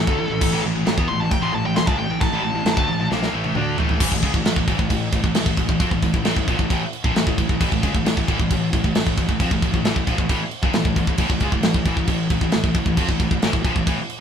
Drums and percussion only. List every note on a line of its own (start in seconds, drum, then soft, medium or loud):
0.07 kick loud
0.41 kick loud
0.41 crash loud
0.41 china medium
0.86 snare loud
0.86 china medium
0.98 kick loud
1.31 kick medium
1.31 china medium
1.76 snare loud
1.76 china medium
1.87 kick loud
2.21 kick loud
2.21 china medium
2.66 snare loud
2.66 china medium
2.77 kick loud
3.12 snare medium
3.23 snare medium
3.44 high tom medium
3.55 mid tom medium
3.78 floor tom loud
3.89 floor tom medium
4.00 kick loud
4.00 crash loud
4.00 crash medium
4.12 kick medium
4.23 kick medium
4.23 crash medium
4.34 kick medium
4.45 snare loud
4.45 crash medium
4.56 kick medium
4.68 kick medium
4.68 crash medium
4.79 kick medium
4.90 kick loud
4.90 crash medium
5.13 kick loud
5.13 crash medium
5.24 kick medium
5.35 snare loud
5.35 crash medium
5.46 kick loud
5.57 kick medium
5.57 crash medium
5.69 kick medium
5.80 kick loud
5.80 crash medium
5.91 kick medium
6.03 kick medium
6.03 crash medium
6.14 kick medium
6.25 snare loud
6.25 crash medium
6.36 kick medium
6.48 kick medium
6.48 crash medium
6.59 kick medium
6.70 kick medium
6.70 crash medium
6.93 crash medium
7.04 kick medium
7.16 snare loud
7.16 crash medium
7.27 kick medium
7.38 kick medium
7.38 crash medium
7.49 kick medium
7.61 kick loud
7.61 crash loud
7.72 kick medium
7.83 kick medium
7.83 crash medium
7.95 kick medium
8.06 snare loud
8.06 crash medium
8.17 kick medium
8.28 kick medium
8.28 crash medium
8.40 kick medium
8.51 kick medium
8.51 crash medium
8.73 kick loud
8.73 crash medium
8.84 kick medium
8.95 snare loud
8.95 crash medium
9.07 kick loud
9.17 kick medium
9.17 crash medium
9.29 kick medium
9.40 kick loud
9.40 crash medium
9.51 kick medium
9.62 kick medium
9.62 crash medium
9.74 kick medium
9.85 snare loud
9.85 crash medium
9.96 kick medium
10.07 kick medium
10.07 crash medium
10.18 kick medium
10.29 kick loud
10.29 crash medium
10.51 crash medium
10.63 kick loud
10.73 snare loud
10.73 crash medium
10.85 kick loud
10.96 kick medium
10.96 crash medium
11.07 kick medium
11.18 kick loud
11.18 crash medium
11.30 kick medium
11.40 kick medium
11.40 crash medium
11.52 kick medium
11.63 snare loud
11.63 crash medium
11.74 kick loud
11.85 kick medium
11.85 crash medium
11.97 kick medium
12.07 kick medium
12.07 crash medium
12.30 kick medium
12.30 crash medium
12.41 kick medium
12.52 snare loud
12.52 crash medium
12.64 kick medium
12.74 kick medium
12.74 crash medium
12.86 kick medium
12.97 kick loud
12.97 crash medium
13.09 kick medium
13.20 kick medium
13.20 crash medium
13.31 kick medium
13.42 snare loud
13.42 crash medium
13.53 kick medium
13.65 kick medium
13.65 crash medium
13.76 kick medium
13.87 kick loud
13.87 crash medium
14.10 crash medium